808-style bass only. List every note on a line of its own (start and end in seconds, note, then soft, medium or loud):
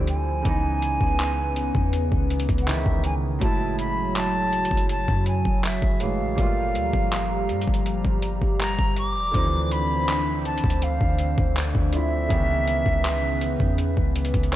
0.00 0.43 D2 loud
0.46 0.99 C#2 loud
1.01 1.72 C#2 medium
1.75 2.11 E2 loud
2.12 2.48 C#2 loud
2.49 2.85 C#2 loud
2.86 3.39 C#2 loud
3.42 4.67 F#1 loud
4.71 5.07 F#1 loud
5.09 5.44 F#2 loud
5.46 5.81 F#1 loud
5.83 6.21 F#1 loud
6.20 6.37 A1 loud
6.38 6.77 G1 loud
6.76 6.93 D2 medium
6.94 7.51 G1 loud
7.50 7.67 G2 loud
7.68 8.03 G1 loud
8.05 8.40 G1 loud
8.42 8.77 G1 loud
8.79 9.18 G1 loud
9.16 9.34 F1 loud
9.35 10.60 D2 loud
10.64 10.99 D2 loud
11.01 11.37 D2 loud
11.38 11.74 D2 loud
11.75 12.28 D2 loud
12.31 12.84 C#2 loud
12.86 13.57 C#2 medium
13.60 13.96 E2 loud
13.97 14.33 C#2 loud
14.34 14.56 C#2 loud